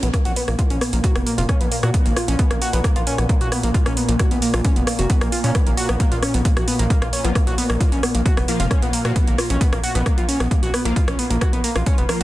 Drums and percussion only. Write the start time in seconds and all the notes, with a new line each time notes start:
0.03 closed hi-hat
0.14 kick, cross-stick, closed hi-hat
0.25 closed hi-hat
0.36 open hi-hat
0.48 cross-stick, closed hi-hat
0.59 kick, closed hi-hat
0.70 closed hi-hat
0.81 cross-stick, open hi-hat
0.93 closed hi-hat
1.04 kick, closed hi-hat
1.16 cross-stick, closed hi-hat
1.27 open hi-hat
1.38 closed hi-hat
1.49 kick, cross-stick, closed hi-hat
1.61 closed hi-hat
1.72 open hi-hat
1.83 cross-stick, closed hi-hat
1.94 kick, closed hi-hat
2.06 closed hi-hat
2.17 cross-stick, open hi-hat
2.28 closed hi-hat
2.39 kick, closed hi-hat
2.51 cross-stick, closed hi-hat
2.62 open hi-hat
2.73 closed hi-hat
2.84 kick, cross-stick, closed hi-hat
2.96 closed hi-hat
3.07 open hi-hat
3.18 cross-stick, closed hi-hat
3.29 kick, closed hi-hat
3.41 closed hi-hat
3.52 cross-stick, open hi-hat
3.63 closed hi-hat
3.74 kick, closed hi-hat
3.86 cross-stick, closed hi-hat
3.97 open hi-hat
4.09 closed hi-hat
4.19 kick, cross-stick, closed hi-hat
4.31 closed hi-hat
4.42 open hi-hat
4.54 cross-stick, closed hi-hat
4.65 kick, closed hi-hat
4.76 closed hi-hat
4.87 cross-stick, open hi-hat
4.99 closed hi-hat
5.10 kick, closed hi-hat
5.21 cross-stick, closed hi-hat
5.32 open hi-hat
5.44 open hi-hat
5.55 kick, cross-stick, closed hi-hat
5.67 closed hi-hat
5.77 open hi-hat
5.89 cross-stick, closed hi-hat
6.00 kick, closed hi-hat
6.12 closed hi-hat
6.23 cross-stick, open hi-hat
6.34 closed hi-hat
6.45 kick, closed hi-hat
6.57 cross-stick, closed hi-hat
6.68 open hi-hat
6.79 closed hi-hat
6.90 kick, closed hi-hat
7.02 cross-stick, closed hi-hat
7.13 open hi-hat
7.25 closed hi-hat
7.35 kick, cross-stick, closed hi-hat
7.47 closed hi-hat
7.58 open hi-hat
7.70 cross-stick, closed hi-hat
7.80 kick, closed hi-hat
7.92 closed hi-hat
8.03 cross-stick, open hi-hat
8.15 closed hi-hat
8.26 kick, closed hi-hat
8.37 cross-stick, closed hi-hat
8.48 open hi-hat
8.60 closed hi-hat
8.71 kick, cross-stick, closed hi-hat
8.82 closed hi-hat
8.93 open hi-hat
9.05 cross-stick, closed hi-hat
9.16 kick, closed hi-hat
9.27 closed hi-hat
9.38 cross-stick, open hi-hat
9.50 closed hi-hat
9.61 kick, closed hi-hat
9.73 cross-stick, closed hi-hat
9.84 open hi-hat
9.95 closed hi-hat
10.06 kick, cross-stick, closed hi-hat
10.18 closed hi-hat
10.29 open hi-hat
10.40 cross-stick, closed hi-hat
10.51 kick, closed hi-hat
10.63 closed hi-hat
10.74 cross-stick, open hi-hat
10.85 closed hi-hat
10.96 kick, closed hi-hat
11.08 cross-stick, closed hi-hat
11.19 open hi-hat
11.31 closed hi-hat
11.41 kick, cross-stick, closed hi-hat
11.53 closed hi-hat
11.64 open hi-hat
11.76 cross-stick, closed hi-hat
11.86 kick, closed hi-hat
11.98 closed hi-hat
12.09 cross-stick, open hi-hat